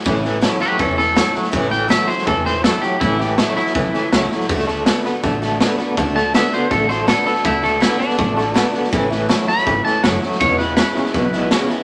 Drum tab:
HH |----p-------p---|----p-------p---|----p-------p---|----p-------p---|
SD |o-o-o-o-o-o-o-oo|o-o-o-ooo-o-o-o-|o-o-o-ooo-o-o-oo|ooo-o-o-o-o-o-o-|
BD |o-------o-------|o-------o-------|o-------o-------|o-------o-------|

HH |----p-------p---|----p-------p---|----p-------p---|----p-------p---|
SD |o-o-o-o-o-o-o-oo|o-o-o-ooo-o-o-oo|o-o-o-ooo-o-o-oo|o-o-o-ooo-o-o-o-|
BD |o-------o-------|o-------o-------|o-------o-------|o-------o-------|